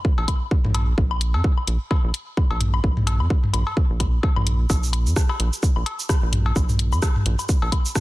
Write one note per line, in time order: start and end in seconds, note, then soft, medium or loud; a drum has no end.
0.05 kick loud
0.18 0.26 A#1 loud
0.18 cowbell medium
0.28 kick medium
0.28 closed hi-hat medium
0.28 low woodblock medium
0.51 kick loud
0.65 0.94 A#1 loud
0.65 mid tom medium
0.74 closed hi-hat medium
0.74 cowbell medium
0.74 low woodblock soft
0.98 1.36 A#1 medium
0.98 kick loud
1.11 low woodblock medium
1.21 closed hi-hat loud
1.34 1.42 F2 medium
1.34 cowbell medium
1.44 kick loud
1.58 low woodblock soft
1.67 1.78 A#1 medium
1.67 closed hi-hat loud
1.91 kick loud
1.91 cowbell medium
1.91 low woodblock medium
2.04 2.12 A#1 loud
2.14 closed hi-hat loud
2.37 kick loud
2.37 low woodblock soft
2.51 2.80 A#1 loud
2.51 cowbell medium
2.60 closed hi-hat loud
2.60 mid tom medium
2.74 low woodblock medium
2.84 3.22 A#1 medium
2.84 kick loud
2.97 mid tom medium
3.07 closed hi-hat medium
3.07 cowbell medium
3.20 3.28 F2 medium
3.20 low woodblock soft
3.30 kick loud
3.43 mid tom medium
3.53 3.64 A#1 medium
3.53 closed hi-hat loud
3.53 low woodblock medium
3.67 cowbell medium
3.77 kick loud
3.90 4.20 A#1 medium
4.00 kick medium
4.00 closed hi-hat medium
4.00 low woodblock soft
4.23 kick loud
4.23 cowbell medium
4.36 4.66 A#1 loud
4.36 mid tom medium
4.36 low woodblock medium
4.47 closed hi-hat medium
4.70 5.08 A#1 medium
4.70 kick loud
4.70 cowbell medium
4.70 cabasa medium
4.83 cabasa soft
4.93 closed hi-hat medium
4.93 low woodblock soft
5.06 5.14 F2 medium
5.06 cabasa soft
5.16 kick loud
5.16 cross-stick medium
5.16 cabasa medium
5.29 cowbell medium
5.29 low woodblock medium
5.40 5.50 A#1 medium
5.40 closed hi-hat medium
5.53 cabasa soft
5.63 kick loud
5.63 cabasa medium
5.76 5.84 A#1 loud
5.76 low woodblock soft
5.86 closed hi-hat medium
5.86 cowbell medium
5.99 cabasa soft
6.09 kick loud
6.09 cross-stick medium
6.09 cabasa medium
6.09 low woodblock medium
6.23 6.52 A#1 loud
6.33 closed hi-hat medium
6.33 mid tom medium
6.46 cowbell medium
6.56 6.94 A#1 loud
6.56 kick loud
6.56 cabasa medium
6.56 low woodblock soft
6.69 mid tom medium
6.69 cabasa soft
6.79 closed hi-hat medium
6.92 7.00 F2 medium
6.92 cabasa soft
6.92 low woodblock medium
7.02 kick loud
7.02 cross-stick medium
7.02 cowbell medium
7.02 cabasa medium
7.16 mid tom medium
7.26 7.36 A#1 loud
7.26 closed hi-hat medium
7.39 cabasa soft
7.39 low woodblock soft
7.49 kick loud
7.49 cabasa medium
7.62 7.70 A#1 loud
7.62 cowbell medium
7.72 kick medium
7.72 closed hi-hat medium
7.72 low woodblock medium
7.85 cabasa soft
7.95 kick loud
7.95 cross-stick medium
7.95 cabasa medium